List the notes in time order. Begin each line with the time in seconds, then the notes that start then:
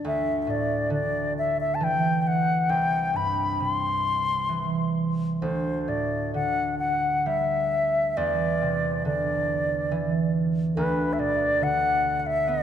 Already playing: B3 D4
0.04 D2 E5
0.42 E5
0.47 A2 D5
0.90 D3 D5
1.38 E5
1.60 E5
1.75 A5
1.80 E3 G5
2.22 G5
2.27 F#5
2.69 C2 G5
3.13 G2 B5
3.60 C3 C6
4.49 E3
5.41 D2 C5
5.88 A2 D5
6.34 D3 F#5
6.79 F#5
7.26 G3 E5
8.17 E2 D5
8.62 C3
9.05 D3 D5
9.91 E3
10.76 D2 B4
11.13 E5
11.19 B2 D5
11.61 D3 F#5
12.19 F#5
12.27 E5
12.47 B3 D5